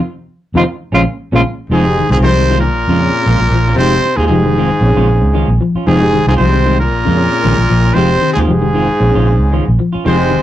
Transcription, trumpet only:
1.73 2.09 G#4 loud
2.12 2.17 G#4 loud
2.23 2.60 C5 loud
2.61 3.74 A#4 loud
3.78 4.18 C5 loud
4.17 4.27 G#4 medium
4.27 5.56 G#4 medium
5.87 6.25 G#4 loud
6.28 6.34 G#4 medium
6.37 6.75 C5 loud
6.80 7.95 A#4 loud
7.94 8.33 C5 loud
8.33 8.39 G#4 medium
8.45 9.72 G#4 medium
10.07 10.42 C5 loud

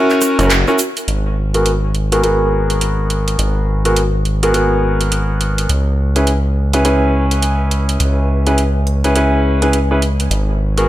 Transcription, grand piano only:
0.00 0.35 C#4 loud
0.00 0.35 E4 medium
0.00 0.35 F#4 medium
0.00 0.35 A#4 loud
0.39 0.53 C#4 medium
0.39 0.53 E4 medium
0.39 0.53 F#4 medium
0.39 0.53 A#4 medium
0.68 0.76 C#4 medium
0.68 0.76 E4 medium
0.68 0.76 F#4 medium
0.68 0.76 A#4 medium
1.54 1.68 B3 medium
1.54 1.68 F#4 medium
1.54 1.68 G#4 medium
1.54 1.68 A#4 medium
2.12 2.21 B3 medium
2.12 2.21 F#4 medium
2.12 2.21 G#4 medium
2.12 2.21 A#4 medium
2.23 3.81 B3 medium
2.23 3.81 F#4 medium
2.23 3.81 G#4 medium
2.23 3.81 A#4 medium
3.85 3.99 B3 medium
3.85 3.99 F#4 medium
3.85 3.99 G#4 medium
3.85 3.99 A#4 medium
4.43 4.51 B3 medium
4.43 4.51 F#4 medium
4.43 4.51 G#4 medium
4.43 4.51 A#4 medium
4.54 5.68 B3 medium
4.54 5.68 F#4 medium
4.54 5.68 G#4 medium
4.54 5.68 A#4 loud
6.16 6.30 C#4 medium
6.16 6.30 E4 medium
6.16 6.30 G#4 medium
6.16 6.30 B4 medium
6.74 6.82 C#4 medium
6.74 6.82 E4 medium
6.74 6.82 G#4 medium
6.74 6.82 B4 medium
6.85 8.42 C#4 medium
6.85 8.42 E4 medium
6.85 8.42 G#4 medium
6.85 8.42 B4 loud
8.47 8.61 C#4 medium
8.47 8.61 E4 medium
8.47 8.61 G#4 medium
8.47 8.61 B4 medium
9.04 9.13 C#4 medium
9.04 9.13 E4 medium
9.04 9.13 G#4 medium
9.04 9.13 B4 medium
9.16 9.58 C#4 medium
9.16 9.58 E4 medium
9.16 9.58 G#4 medium
9.16 9.58 B4 medium
9.62 9.76 C#4 medium
9.62 9.76 E4 medium
9.62 9.76 G#4 medium
9.62 9.76 B4 medium
9.91 9.99 C#4 medium
9.91 9.99 E4 medium
9.91 9.99 G#4 medium
9.91 9.99 B4 medium
10.77 10.89 B3 medium
10.77 10.89 F#4 medium
10.77 10.89 G#4 medium
10.77 10.89 A#4 medium

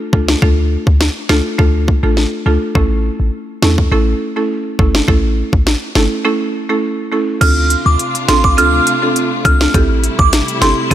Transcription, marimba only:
0.13 0.40 A3 medium
0.13 0.40 D4 medium
0.13 0.40 F4 medium
0.13 0.40 A4 medium
0.42 1.23 A3 medium
0.42 1.23 D4 medium
0.42 1.23 F4 medium
0.42 1.23 A4 loud
1.29 1.56 A3 medium
1.29 1.56 D4 medium
1.29 1.57 F4 medium
1.29 1.57 A4 medium
1.58 1.99 A3 medium
1.58 2.00 D4 medium
1.58 2.00 F4 medium
1.58 2.00 A4 loud
2.03 2.22 A3 medium
2.03 2.22 D4 medium
2.03 2.22 F4 medium
2.03 2.22 A4 medium
2.46 2.66 A3 medium
2.46 2.66 D4 medium
2.46 2.66 F4 medium
2.46 2.66 A4 medium
2.75 3.56 A3 medium
2.75 3.56 C#4 medium
2.75 3.56 E4 medium
2.75 3.56 A4 loud
3.62 3.89 A3 medium
3.62 3.90 C#4 medium
3.62 3.90 E4 medium
3.62 3.90 A4 medium
3.92 4.33 A3 medium
3.92 4.33 C#4 medium
3.92 4.33 E4 medium
3.92 4.33 A4 loud
4.36 4.76 A3 medium
4.36 4.76 C#4 medium
4.36 4.76 E4 medium
4.36 4.76 A4 medium
4.79 5.06 A3 medium
4.79 5.06 C#4 medium
4.79 5.06 E4 medium
4.79 5.06 A4 medium
5.08 5.89 A3 medium
5.08 5.89 C#4 medium
5.08 5.89 E4 medium
5.08 5.89 A4 loud
5.96 6.23 A3 medium
5.96 6.23 C#4 medium
5.96 6.23 E4 medium
5.96 6.23 A4 medium
6.25 6.66 A3 medium
6.25 6.66 C#4 medium
6.25 6.66 E4 medium
6.25 6.66 A4 loud
6.69 6.88 A3 medium
6.69 6.88 C#4 medium
6.69 6.88 E4 medium
6.69 6.88 A4 medium
7.12 7.32 A3 medium
7.12 7.32 C#4 medium
7.12 7.32 E4 medium
7.12 7.32 A4 medium
7.41 8.22 C4 medium
7.41 8.22 D4 medium
7.41 8.22 F4 medium
7.41 8.22 A4 loud
8.28 8.55 C4 medium
8.28 8.56 D4 medium
8.28 8.56 F4 medium
8.28 8.56 A4 medium
8.57 8.98 C4 medium
8.57 8.99 D4 medium
8.57 8.99 F4 medium
8.57 8.99 A4 loud
9.02 9.42 C4 medium
9.02 9.42 D4 medium
9.02 9.42 F4 medium
9.02 9.42 A4 medium
9.45 9.72 C4 medium
9.45 9.72 D4 medium
9.45 9.72 F4 medium
9.45 9.72 A4 medium
9.74 10.55 C4 medium
9.74 10.55 E4 medium
9.74 10.55 G4 medium
9.74 10.55 A4 loud
10.61 10.88 C4 medium
10.61 10.89 E4 medium
10.61 10.89 G4 medium
10.61 10.89 A4 medium
10.91 10.94 C4 medium
10.91 10.94 E4 medium
10.91 10.94 G4 medium
10.91 10.94 A4 loud

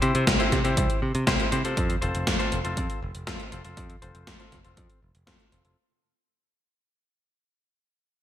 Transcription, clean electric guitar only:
0.02 0.37 C4 medium
0.02 0.37 E4 medium
0.02 0.37 G4 medium
0.02 0.37 C5 medium
0.39 0.58 C4 medium
0.39 0.58 E4 medium
0.39 0.58 G4 medium
0.39 0.58 C5 loud
0.64 0.99 C4 medium
0.64 0.99 E4 medium
0.64 0.99 G4 medium
0.64 0.99 C5 medium
1.27 1.49 C4 medium
1.27 1.49 E4 medium
1.27 1.49 G4 medium
1.27 1.49 C5 medium
1.52 1.62 C4 medium
1.52 1.62 E4 medium
1.52 1.62 G4 medium
1.52 1.62 C5 medium
1.64 1.95 C4 medium
1.64 1.94 F4 medium
1.64 1.95 A4 medium
1.64 1.95 C5 medium
2.02 2.37 C4 medium
2.02 2.37 F4 medium
2.02 2.37 A4 medium
2.02 2.37 C5 medium
2.39 2.58 C4 medium
2.39 2.58 F4 medium
2.39 2.58 A4 medium
2.39 2.58 C5 loud
2.64 2.99 C4 medium
2.64 2.99 F4 medium
2.64 2.99 A4 medium
2.64 2.99 C5 medium
3.27 3.49 C4 medium
3.27 3.49 F4 medium
3.27 3.49 A4 medium
3.27 3.49 C5 medium
3.52 3.62 C4 medium
3.52 3.62 F4 medium
3.52 3.62 A4 medium
3.52 3.62 C5 medium
3.65 3.95 C4 medium
3.65 3.95 F4 medium
3.65 3.95 A4 medium
3.65 3.95 C5 medium
4.02 4.37 C4 medium
4.02 4.37 F4 medium
4.02 4.37 A4 medium
4.02 4.37 C5 medium
4.39 4.58 C4 medium
4.39 4.58 F4 medium
4.39 4.58 A4 medium
4.39 4.58 C5 loud
4.64 4.99 C4 medium
4.64 4.99 F4 medium
4.64 4.99 A4 medium
4.64 4.99 C5 medium
5.27 5.49 C4 medium
5.27 5.49 F4 medium
5.27 5.49 A4 medium
5.27 5.49 C5 medium
5.52 5.62 C4 medium
5.52 5.62 F4 medium
5.52 5.62 A4 medium
5.52 5.62 C5 medium
5.65 5.76 C4 medium
5.65 5.76 F4 medium
5.65 5.76 A4 medium
5.65 5.76 C5 medium

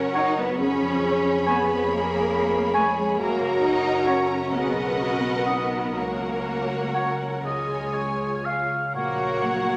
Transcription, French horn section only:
0.00 0.55 A#4 medium
0.61 3.16 G#4 medium
3.19 4.50 F#4 medium
4.55 5.00 G#4 medium
5.01 5.47 F#4 medium
5.48 5.96 D#4 medium
5.97 8.15 C#4 medium
8.96 9.77 F#4 medium

